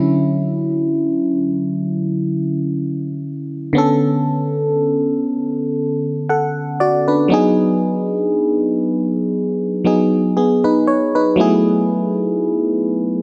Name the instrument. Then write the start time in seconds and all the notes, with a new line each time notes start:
fm electric piano
Already playing: D3 F#3 C#4 E4
3.73 D3 B3 C#4
3.78 A4
6.29 A4 F#5
6.80 F#4 D5
7.08 D4 B4
7.28 F#3 B3 D#4
7.34 G#4
9.85 F#3 B3 D#4 G#4
10.37 B3 G#4
10.64 D#4 B4
10.87 C#5
11.15 D#4 B4
11.36 F#3 A3 B3 E4
11.41 G#4